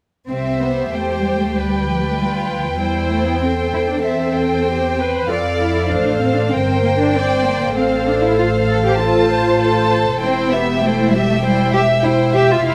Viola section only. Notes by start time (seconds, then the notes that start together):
0.31 G4
2.18 F4
2.79 E4
3.42 A4
4.68 G4
4.98 B4
5.30 A4
5.91 A4
6.53 A#4
7.14 C5
7.75 A4
9.00 A4
9.29 C5
9.60 C5
10.21 E4
10.52 G4
10.83 E4
11.12 G4
11.44 E4
11.73 G4
12.03 E4
12.34 G4
12.65 F4